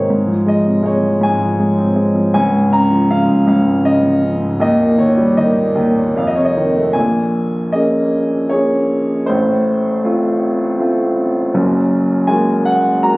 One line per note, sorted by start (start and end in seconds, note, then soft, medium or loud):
0.00 0.10 G#2 medium
0.00 0.12 C3 soft
0.00 0.12 D#3 soft
0.00 0.12 G#3 soft
0.00 0.12 D#4 soft
0.00 0.12 C5 medium
0.00 0.49 C#5 medium
0.00 0.12 D#5 medium
0.00 0.12 F5 medium
0.10 1.19 G#2 medium
0.27 1.01 F3 soft
0.46 0.81 G#3 soft
0.46 0.83 D#5 medium
0.65 2.12 C3 medium
0.83 1.57 G#3 medium
0.83 1.24 C#5 medium
1.02 1.38 F3 soft
1.21 2.31 G#2 medium
1.21 1.94 G#5 medium
1.40 2.13 F3 medium
1.59 1.94 G#3 soft
1.77 2.33 C4 medium
1.96 2.33 G#3 medium
2.15 2.34 F3 medium
2.34 3.45 C#2 medium
2.34 2.73 G#5 medium
2.53 3.27 G#2 medium
2.72 3.09 C#3 medium
2.72 3.11 A#5 medium
2.91 4.01 F3 medium
3.10 3.83 C#3 medium
3.10 3.47 F5 medium
3.29 3.64 G#2 soft
3.47 4.57 C#2 medium
3.47 3.82 F5 medium
3.66 4.40 G#2 medium
3.84 4.20 C#3 medium
3.84 4.56 D#5 medium
4.03 4.58 F3 medium
4.22 4.59 C#3 medium
4.41 4.59 G#2 soft
4.60 5.74 D#2 medium
4.60 4.96 D#5 medium
4.79 5.54 A#2 medium
4.98 5.36 D#3 medium
4.98 5.38 C#5 medium
5.17 6.14 G3 medium
5.37 6.15 D#3 medium
5.37 6.16 D#5 medium
5.56 5.94 A#2 soft
5.75 6.15 D#2 medium
5.95 6.16 A#2 medium
6.16 6.93 F2 medium
6.16 6.28 F5 medium
6.27 6.38 D#5 medium
6.35 6.94 C3 medium
6.35 6.46 C#5 medium
6.45 6.56 D#5 medium
6.57 6.95 D#3 medium
6.76 6.95 A3 medium
6.93 9.25 A#1 medium
6.93 9.25 A#2 medium
6.93 7.75 G#5 medium
7.72 8.36 A#3 soft
7.72 8.37 C#4 soft
7.72 8.37 G#4 soft
7.72 8.54 D#5 medium
8.49 9.14 A#3 soft
8.49 9.14 C#4 soft
8.49 9.14 G#4 soft
8.49 9.30 C#5 medium
9.26 11.50 A1 medium
9.26 11.50 A2 medium
9.26 11.11 C5 medium
10.04 10.64 A3 medium
10.04 10.64 C4 soft
10.04 10.64 F4 medium
10.80 11.39 A3 medium
10.80 11.40 C4 soft
10.80 11.40 F4 medium
11.54 13.17 F#1 medium
11.54 13.17 F#2 medium
12.27 12.87 G#3 medium
12.27 12.88 A#3 medium
12.27 12.88 F#4 medium
12.27 12.62 G#5 medium
12.65 13.04 F#5 medium
13.03 13.17 G#3 soft
13.03 13.17 A#3 soft
13.03 13.17 F#4 medium
13.03 13.17 A#5 medium